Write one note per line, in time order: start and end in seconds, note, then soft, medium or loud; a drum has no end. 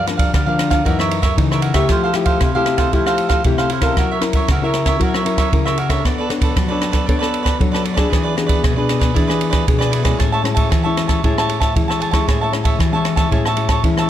0.00 0.31 G2 medium
0.06 0.31 F3 medium
0.06 0.31 A#3 medium
0.06 0.32 D4 medium
0.06 muted cavaquinho stroke soft
0.06 cross-stick medium
0.06 ride soft
0.17 0.32 A#4 medium
0.17 0.32 D5 medium
0.17 0.31 F5 medium
0.17 kick medium
0.17 ride medium
0.33 0.83 D3 medium
0.33 0.45 G4 soft
0.33 0.46 A#4 soft
0.33 0.46 D5 soft
0.33 0.45 F5 soft
0.33 kick medium
0.33 cross-stick medium
0.33 ride soft
0.46 0.81 F3 medium
0.46 0.82 A#3 medium
0.46 0.82 D4 medium
0.46 0.72 A#4 medium
0.46 0.70 D5 medium
0.46 0.69 F5 medium
0.59 cross-stick medium
0.59 ride soft
0.70 0.84 A#4 medium
0.70 0.84 D5 medium
0.70 0.83 F5 medium
0.70 kick medium
0.70 cross-stick medium
0.70 ride soft
0.85 1.35 F#2 medium
0.85 1.19 E3 medium
0.85 1.19 A#3 medium
0.85 1.19 D#4 medium
0.85 0.97 F#4 soft
0.85 0.97 A#4 soft
0.85 0.98 C#5 soft
0.85 0.98 E5 soft
0.85 kick medium
0.85 ride soft
0.99 1.24 A#4 medium
0.99 1.23 C#5 medium
0.99 1.21 E5 medium
0.99 cross-stick medium
1.11 ride soft
1.22 1.37 A#4 medium
1.22 1.36 C#5 medium
1.22 1.35 E5 medium
1.22 kick medium
1.22 cross-stick medium
1.22 ride soft
1.37 1.87 C#3 medium
1.37 1.72 E3 soft
1.37 1.72 A#3 medium
1.37 1.72 D#4 medium
1.37 muted cavaquinho stroke soft
1.37 kick medium
1.37 ride soft
1.51 1.61 A#4 medium
1.51 1.62 C#5 medium
1.51 1.63 E5 medium
1.51 cross-stick medium
1.61 1.74 F#4 soft
1.61 1.75 A#4 soft
1.61 1.74 C#5 soft
1.61 1.73 E5 soft
1.61 ride soft
1.74 2.10 A3 medium
1.74 2.10 E4 medium
1.74 2.11 G4 medium
1.74 1.88 A#4 medium
1.74 1.88 C#5 medium
1.74 1.87 E5 medium
1.74 kick medium
1.74 cross-stick medium
1.74 ride soft
1.89 2.38 F3 medium
1.89 2.01 E4 soft
1.89 2.02 A4 soft
1.89 2.02 C5 medium
1.89 2.02 F5 medium
1.89 kick medium
1.89 cross-stick medium
1.89 ride soft
2.03 2.14 A4 medium
2.03 2.14 C5 medium
2.03 2.15 F5 medium
2.14 2.50 A3 medium
2.14 2.50 E4 medium
2.14 2.50 G4 medium
2.14 muted cavaquinho stroke soft
2.14 cross-stick medium
2.14 ride soft
2.25 2.40 A4 medium
2.25 2.39 C5 medium
2.25 2.39 F5 medium
2.25 kick medium
2.25 ride soft
2.40 2.91 C3 medium
2.40 2.53 E4 soft
2.40 2.53 A4 soft
2.40 2.54 C5 soft
2.40 2.54 F5 medium
2.40 kick medium
2.40 cross-stick medium
2.40 ride soft
2.55 2.90 A3 medium
2.55 2.90 E4 medium
2.55 2.90 G4 medium
2.55 2.78 A4 medium
2.55 2.78 C5 medium
2.55 2.77 F5 medium
2.66 cross-stick medium
2.66 ride soft
2.78 2.92 A4 soft
2.78 2.91 C5 medium
2.78 2.91 F5 medium
2.78 kick medium
2.78 cross-stick medium
2.78 ride soft
2.92 3.42 F3 medium
2.92 3.41 A3 medium
2.92 3.05 E4 soft
2.92 3.41 E4 medium
2.92 3.41 G4 medium
2.92 3.05 A4 soft
2.92 3.06 C5 medium
2.92 3.05 F5 medium
2.92 kick medium
2.92 ride soft
3.06 3.30 A4 medium
3.06 3.29 C5 medium
3.06 3.28 F5 medium
3.06 cross-stick medium
3.18 ride soft
3.29 3.43 A4 medium
3.29 3.43 C5 medium
3.29 3.42 F5 medium
3.29 kick medium
3.29 cross-stick medium
3.29 ride soft
3.44 3.95 C3 medium
3.44 3.70 A3 medium
3.44 3.70 E4 medium
3.44 3.70 G4 medium
3.44 muted cavaquinho stroke soft
3.44 kick medium
3.44 ride soft
3.58 3.70 A4 medium
3.58 3.71 C5 medium
3.58 3.70 F5 medium
3.58 cross-stick medium
3.70 3.82 E4 soft
3.70 3.83 A4 soft
3.70 3.82 C5 medium
3.70 3.82 F5 medium
3.70 ride soft
3.81 4.17 C#4 medium
3.81 4.18 E4 soft
3.81 3.96 A4 medium
3.81 4.18 A#4 medium
3.81 3.96 C5 medium
3.81 3.95 F5 medium
3.81 kick medium
3.81 cross-stick medium
3.81 ride soft
3.96 4.46 F#3 medium
3.96 4.09 F#4 soft
3.96 4.10 A#4 medium
3.96 4.10 C#5 medium
3.96 4.10 E5 medium
3.96 kick medium
3.96 cross-stick medium
3.96 ride soft
4.11 4.22 A#4 medium
4.11 4.22 C#5 soft
4.11 4.23 E5 medium
4.21 4.46 C#4 medium
4.21 4.46 E4 medium
4.21 4.47 A#4 medium
4.21 muted cavaquinho stroke soft
4.21 cross-stick medium
4.21 ride soft
4.33 4.48 C#5 medium
4.33 4.47 E5 medium
4.33 kick medium
4.33 ride soft
4.38 4.49 A#4 medium
4.48 4.98 C#3 medium
4.48 4.62 F#4 soft
4.48 4.62 A#4 soft
4.48 4.62 C#5 soft
4.48 kick medium
4.48 cross-stick medium
4.48 ride soft
4.53 4.63 E5 soft
4.62 4.97 C#4 medium
4.62 4.97 E4 medium
4.62 4.97 A#4 medium
4.62 4.87 C#5 medium
4.62 4.86 E5 medium
4.66 4.88 A#4 medium
4.74 cross-stick medium
4.74 ride soft
4.86 5.00 A#4 medium
4.86 5.00 C#5 medium
4.86 4.99 E5 medium
4.86 kick medium
4.86 cross-stick medium
4.86 ride soft
4.99 5.49 F#3 medium
4.99 5.22 C#4 medium
4.99 5.22 E4 soft
4.99 5.13 F#4 soft
4.99 5.22 A#4 medium
4.99 5.14 A#4 soft
4.99 kick medium
4.99 ride soft
5.04 5.14 C#5 soft
5.04 5.15 E5 medium
5.14 5.39 A#4 soft
5.14 5.38 C#5 medium
5.14 5.37 E5 medium
5.14 cross-stick medium
5.25 5.48 C#4 soft
5.25 5.48 E4 medium
5.25 5.48 A#4 medium
5.25 ride soft
5.38 5.52 A#4 medium
5.38 5.51 C#5 medium
5.38 5.51 E5 medium
5.38 kick medium
5.38 cross-stick medium
5.38 ride soft
5.52 6.02 C#3 medium
5.52 5.77 C#4 soft
5.52 5.77 E4 soft
5.52 5.77 A#4 medium
5.52 muted cavaquinho stroke soft
5.52 kick medium
5.52 ride soft
5.65 5.77 A#4 soft
5.65 5.78 C#5 medium
5.65 5.77 E5 medium
5.65 cross-stick medium
5.77 5.90 F#4 soft
5.77 5.90 A#4 soft
5.77 5.89 C#5 soft
5.77 5.88 E5 medium
5.77 ride soft
5.89 6.25 D4 medium
5.89 6.25 A4 medium
5.89 6.03 A#4 medium
5.89 6.03 C#5 medium
5.89 6.26 C#5 medium
5.89 6.02 E5 medium
5.89 kick medium
5.89 cross-stick medium
5.89 ride medium
6.05 6.54 B3 medium
6.05 6.17 D4 soft
6.05 6.17 A4 medium
6.05 6.17 B4 soft
6.05 6.17 D5 soft
6.05 kick medium
6.05 cross-stick medium
6.05 ride soft
6.18 6.29 A4 medium
6.18 6.29 B4 medium
6.18 6.29 D5 medium
6.30 6.54 D4 medium
6.30 6.55 A4 medium
6.30 6.55 C#5 medium
6.30 muted cavaquinho stroke soft
6.30 cross-stick soft
6.30 ride soft
6.41 6.56 A4 medium
6.41 6.55 B4 medium
6.41 6.54 D5 medium
6.41 kick medium
6.41 ride medium
6.56 7.06 F#3 medium
6.56 6.68 D4 soft
6.56 6.69 A4 soft
6.56 6.68 B4 soft
6.56 6.67 D5 soft
6.56 kick medium
6.56 cross-stick medium
6.56 ride soft
6.68 7.05 D4 medium
6.68 6.91 A4 soft
6.68 7.06 A4 medium
6.68 6.90 B4 medium
6.68 7.05 C#5 medium
6.68 6.90 D5 medium
6.81 cross-stick medium
6.81 ride soft
6.91 7.05 A4 soft
6.91 7.05 B4 medium
6.91 7.05 D5 medium
6.91 kick medium
6.91 cross-stick medium
6.91 ride soft
7.06 7.58 B3 medium
7.06 7.19 D4 soft
7.06 7.42 D4 soft
7.06 7.19 A4 soft
7.06 7.42 A4 medium
7.06 7.19 B4 medium
7.06 7.42 C#5 medium
7.06 7.18 D5 soft
7.06 kick medium
7.06 ride soft
7.19 7.43 A4 medium
7.19 7.43 B4 medium
7.19 7.41 D5 medium
7.19 cross-stick medium
7.34 ride soft
7.43 7.58 A4 medium
7.43 7.58 B4 medium
7.43 7.57 D5 medium
7.43 kick soft
7.43 cross-stick medium
7.43 ride soft
7.59 8.10 F#3 medium
7.59 7.85 D4 medium
7.59 7.85 A4 soft
7.59 7.85 C#5 medium
7.59 muted cavaquinho stroke soft
7.59 kick medium
7.59 ride soft
7.72 7.82 A4 medium
7.72 7.83 B4 medium
7.72 7.83 D5 medium
7.72 cross-stick medium
7.83 7.96 D4 soft
7.83 7.95 A4 soft
7.83 7.94 B4 soft
7.83 7.93 D5 medium
7.83 ride soft
7.94 8.33 B3 medium
7.94 8.33 D4 medium
7.94 8.10 A4 medium
7.94 8.09 B4 medium
7.94 8.09 D5 medium
7.94 kick medium
7.94 cross-stick medium
7.94 ride soft
7.98 8.34 G#4 medium
8.10 8.61 E3 medium
8.10 8.23 E4 medium
8.10 8.23 G#4 medium
8.10 8.23 B4 soft
8.10 8.22 D5 medium
8.10 kick medium
8.10 cross-stick medium
8.10 ride soft
8.23 8.35 G#4 medium
8.23 8.36 B4 medium
8.23 8.35 D5 medium
8.36 8.72 B3 medium
8.36 8.72 D4 medium
8.36 8.73 G#4 medium
8.36 muted cavaquinho stroke soft
8.36 cross-stick medium
8.36 ride soft
8.47 8.62 G#4 soft
8.47 8.61 B4 medium
8.47 8.61 D5 medium
8.47 kick medium
8.47 ride soft
8.63 9.13 B2 medium
8.63 8.76 E4 soft
8.63 8.76 G#4 soft
8.63 8.76 B4 soft
8.63 8.75 D5 soft
8.63 kick medium
8.63 cross-stick medium
8.63 ride soft
8.76 9.12 B3 medium
8.76 9.12 D4 medium
8.76 9.12 G#4 medium
8.76 9.00 G#4 soft
8.76 8.99 B4 medium
8.76 8.98 D5 medium
8.89 cross-stick medium
8.89 ride soft
8.99 9.13 G#4 medium
8.99 9.14 B4 medium
8.99 9.13 D5 medium
8.99 kick medium
8.99 cross-stick medium
8.99 ride soft
9.14 9.65 E3 medium
9.14 9.63 B3 soft
9.14 9.64 D4 medium
9.14 9.27 E4 soft
9.14 9.27 G#4 soft
9.14 9.63 G#4 medium
9.14 9.27 B4 soft
9.14 9.26 D5 medium
9.14 kick medium
9.14 ride soft
9.27 9.51 G#4 medium
9.27 9.50 B4 medium
9.27 9.49 D5 medium
9.27 cross-stick medium
9.41 ride soft
9.50 9.66 G#4 medium
9.50 9.65 B4 medium
9.50 9.64 D5 medium
9.50 kick medium
9.50 cross-stick medium
9.50 ride soft
9.67 10.17 B2 medium
9.67 10.03 B3 medium
9.67 10.03 D4 soft
9.67 10.03 G#4 medium
9.67 muted cavaquinho stroke soft
9.67 kick medium
9.67 ride soft
9.79 9.90 G#4 soft
9.79 9.91 B4 medium
9.79 9.92 D5 medium
9.79 cross-stick medium
9.91 10.04 E4 soft
9.91 10.03 G#4 soft
9.91 10.02 B4 soft
9.91 10.01 D5 soft
9.91 ride medium
10.02 10.41 G#3 medium
10.02 10.41 C#4 medium
10.02 10.41 E4 medium
10.02 10.16 G#4 medium
10.02 10.17 B4 medium
10.02 10.17 D5 medium
10.02 kick medium
10.02 cross-stick medium
10.02 ride soft
10.17 10.69 A2 medium
10.17 10.30 G#4 soft
10.17 10.31 C#5 soft
10.17 10.32 E5 soft
10.17 10.31 A5 soft
10.17 kick medium
10.17 cross-stick medium
10.17 ride soft
10.32 10.42 C#5 medium
10.32 10.42 E5 medium
10.32 10.43 A5 medium
10.42 10.69 G#3 medium
10.42 10.69 C#4 medium
10.42 10.70 E4 medium
10.42 muted cavaquinho stroke soft
10.42 cross-stick medium
10.42 ride soft
10.55 10.69 C#5 soft
10.55 10.69 E5 medium
10.55 10.69 A5 medium
10.55 kick medium
10.55 ride soft
10.69 11.21 E3 medium
10.69 10.83 G#4 soft
10.69 10.83 C#5 soft
10.69 10.83 E5 soft
10.69 10.82 A5 soft
10.69 kick medium
10.69 cross-stick medium
10.69 ride soft
10.83 11.20 G#3 medium
10.83 11.20 C#4 medium
10.83 11.20 E4 medium
10.83 11.09 C#5 medium
10.83 11.08 E5 medium
10.83 11.06 A5 medium
10.97 cross-stick medium
10.97 ride soft
11.08 11.22 C#5 soft
11.08 11.22 E5 medium
11.08 11.21 A5 medium
11.08 kick soft
11.08 cross-stick medium
11.08 ride soft
11.24 11.73 A2 medium
11.24 11.57 G#3 medium
11.24 11.57 C#4 medium
11.24 11.58 E4 medium
11.24 11.36 G#4 soft
11.24 11.36 C#5 medium
11.24 11.36 E5 soft
11.24 11.37 A5 medium
11.24 kick medium
11.24 ride soft
11.38 11.61 C#5 medium
11.38 11.60 E5 medium
11.38 11.59 A5 medium
11.38 cross-stick medium
11.49 ride soft
11.60 11.74 C#5 soft
11.60 11.74 E5 medium
11.60 11.73 A5 medium
11.60 kick medium
11.60 cross-stick medium
11.60 ride soft
11.76 12.25 E3 medium
11.76 12.10 G#3 medium
11.76 12.11 C#4 soft
11.76 12.11 E4 medium
11.76 kick medium
11.76 ride soft
11.88 11.99 C#5 medium
11.88 12.00 E5 medium
11.88 12.00 A5 medium
11.88 cross-stick medium
12.00 12.13 G#4 soft
12.00 12.12 C#5 medium
12.00 12.12 E5 soft
12.00 12.10 A5 medium
12.00 ride soft
12.11 12.49 G#3 medium
12.11 12.49 C#4 medium
12.11 12.49 E4 medium
12.11 12.26 C#5 medium
12.11 12.26 E5 medium
12.11 12.25 A5 medium
12.11 kick medium
12.11 cross-stick medium
12.11 ride soft
12.28 12.77 A2 medium
12.28 12.39 G#4 medium
12.28 12.40 C#5 soft
12.28 12.40 E5 medium
12.28 12.40 A5 soft
12.28 kick medium
12.28 cross-stick medium
12.28 ride soft
12.41 12.52 C#5 medium
12.41 12.53 E5 medium
12.41 12.53 A5 medium
12.52 12.77 G#3 medium
12.52 12.77 C#4 medium
12.52 12.78 E4 medium
12.52 muted cavaquinho stroke soft
12.52 cross-stick medium
12.52 ride soft
12.64 12.78 C#5 medium
12.64 12.78 E5 medium
12.64 12.77 A5 medium
12.64 kick medium
12.64 ride medium
12.79 13.28 E3 medium
12.79 12.91 G#4 soft
12.79 12.92 C#5 soft
12.79 12.92 E5 soft
12.79 12.92 A5 soft
12.79 kick medium
12.79 cross-stick medium
12.79 ride soft
12.92 13.27 G#3 medium
12.92 13.27 C#4 medium
12.92 13.27 E4 medium
12.92 13.17 C#5 medium
12.92 13.17 E5 medium
12.92 13.15 A5 medium
13.05 cross-stick medium
13.05 ride soft
13.16 13.30 C#5 soft
13.16 13.30 E5 medium
13.16 13.29 A5 medium
13.16 kick medium
13.16 cross-stick medium
13.16 ride soft
13.31 13.81 A2 medium
13.31 13.46 G#3 medium
13.31 13.47 C#4 medium
13.31 13.47 E4 medium
13.31 13.43 G#4 soft
13.31 13.44 C#5 soft
13.31 13.44 E5 medium
13.31 13.44 A5 medium
13.31 kick medium
13.31 ride soft
13.45 13.70 C#5 medium
13.45 13.69 E5 medium
13.45 13.68 A5 medium
13.45 cross-stick medium
13.56 13.79 G#3 soft
13.56 13.79 C#4 medium
13.56 13.79 E4 medium
13.56 ride soft
13.69 13.83 C#5 medium
13.69 13.82 E5 medium
13.69 13.81 A5 medium
13.69 kick medium
13.69 cross-stick medium
13.69 ride soft
13.84 14.10 E3 medium
13.84 14.10 G#3 soft
13.84 14.10 C#4 medium
13.84 14.10 E4 medium
13.84 muted cavaquinho stroke soft
13.84 kick medium
13.84 ride soft
13.97 14.09 C#5 medium
13.97 14.10 E5 medium
13.97 14.09 A5 medium
13.97 cross-stick medium